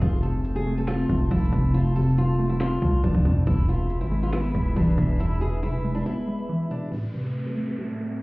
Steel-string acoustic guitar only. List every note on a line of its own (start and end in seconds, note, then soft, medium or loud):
0.02 0.20 F4 medium
0.23 0.53 A4 medium
0.56 0.74 G#4 medium
0.78 0.87 A4 medium
0.88 1.28 F4 medium
1.31 1.72 E4 medium
1.74 1.93 F4 loud
1.96 2.14 A4 medium
2.18 2.48 F4 medium
2.49 2.59 E4 medium
2.60 3.01 F4 medium
3.04 3.44 D4 medium
3.47 3.65 E4 medium
3.69 3.99 F4 medium
4.01 4.19 E4 medium
4.23 4.32 F4 medium
4.33 4.74 E4 medium
4.76 5.17 D4 medium
5.20 5.38 E4 medium
5.41 5.59 G#4 medium
5.63 5.93 E4 medium
5.95 6.04 D4 medium
6.06 6.67 E4 medium
6.71 6.89 D4 medium
6.92 7.10 A4 medium
7.14 7.44 B4 medium
7.46 7.65 A4 medium
7.68 7.77 B4 medium
7.79 8.19 A4 medium